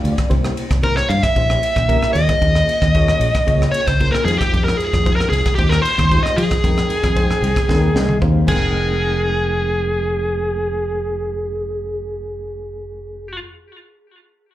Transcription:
Already playing: A3 D4 F4 G4 D5 F5
0.04 D2, ride
0.13 D5
0.18 kick, cross-stick, ride
0.29 C2 A#3 C#4 E4 G4 C5, kick, ride
0.45 cross-stick
0.57 ride
0.70 C2, kick, cross-stick, ride
0.83 A#3 C#4 E4 G4 A#4 C5, kick, ride
0.97 C#5, cross-stick
1.09 G2 F5, ride
1.23 E5, muted fingered electric bass stroke, kick, cross-stick, ride
1.36 A#1 A#3 C#4 E4 G4 C5, kick, ride
1.50 cross-stick
1.63 ride
1.76 A#1, kick, cross-stick, ride
1.89 A#3 C#4 E4 G4 A#4, kick, ride
2.03 muted fingered electric bass stroke, cross-stick
2.13 D#2 A#3 C#4 F4 G#4 C5 D#5, ride
2.29 kick, cross-stick, ride
2.41 D#2, kick, ride
2.55 cross-stick
2.69 ride
2.82 D#2, kick, cross-stick, ride
2.95 A#3 C#4 F4 G#4 C#5, kick, ride
3.08 cross-stick
3.20 A#1, ride
3.35 kick, cross-stick, ride
3.46 C#2 A#3 C#4 F4 G#4 C#5, kick, ride
3.62 cross-stick
3.71 C#5, ride
3.87 C#2 C5, kick, cross-stick, ride
4.00 A#3 C#4 F4 G#4 A#4, kick, ride
4.12 A#4, muted fingered electric bass stroke, cross-stick
4.25 F2 G#3 D#4 F4 G4 G#4 C5, ride
4.38 G4, kick, cross-stick, ride
4.53 F2, kick, ride
4.64 A#4
4.68 cross-stick
4.77 G#4, ride
4.93 F2, kick, cross-stick, ride
5.05 G#3 D#4 F4 G4 C5, kick, ride
5.16 A#4
5.20 cross-stick
5.29 C2 G#4, ride
5.46 kick, cross-stick, ride
5.55 D#2 G#3 D#4 F4 G4 C5, kick, ride
5.69 A#4, cross-stick
5.82 C5, ride
5.98 D#2, kick, cross-stick, ride
6.11 G#3 D#4 F4 G4 C5, kick, ride
6.23 D#5, muted fingered electric bass stroke, cross-stick
6.36 F3 G#4, ride
6.51 kick, cross-stick, ride
6.64 F2 G#3 C4 D#4 A#4 G5, kick, ride
6.78 cross-stick
6.90 ride
7.03 F2, kick, cross-stick, ride
7.16 G#3 C4 D#4 C5 G5, kick, ride
7.31 cross-stick
7.42 C2, ride
7.56 kick, cross-stick, ride
7.68 D#2 G#3 C4 D#4 A#4 G5, kick, snare
7.94 C2 D#5, snare
8.09 mid tom
8.22 D#2 G#3 C4 D#4 G4 C5 F5, kick
8.47 F1 G#3 C4 D#4 G#4 A#4 G5, kick, crash

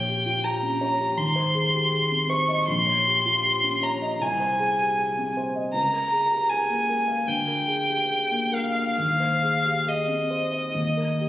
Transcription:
Already playing: A#1 C#5 G5
0.08 G4
0.26 F4
0.44 G4 A#5
0.63 C#4
0.81 C#5
1.00 G4
1.17 G#1 C6
1.36 C5
1.55 G#4
1.73 G4
1.92 G#4
2.11 C4
2.29 C5 C#6
2.49 D#5
2.68 A#1 C6
2.87 C#5
3.06 G4
3.25 F4
3.44 G4
3.63 C#4
3.83 C#5 A#5
4.02 D#5
4.20 C2 G#5
4.40 C5
4.59 G#4
4.79 G4
4.98 G#4
5.18 C4
5.37 C5
5.55 D#5
5.74 C#2 A#5
5.92 A#4
6.12 G#4
6.32 G4
6.49 G#4 G#5
6.69 A#3
6.89 A#4
7.08 F5
7.27 D2 G5
7.47 A#4
7.68 G#4
7.88 G4
8.09 G#4
8.31 A#3
8.52 A#4 F5
8.75 F5
8.98 D#2 F5
9.20 C5
9.43 G#4
9.64 G4
9.86 G#4 D#5
10.08 C4
10.30 C5
10.52 D#5
10.74 D#2
10.97 A#4
11.20 G4

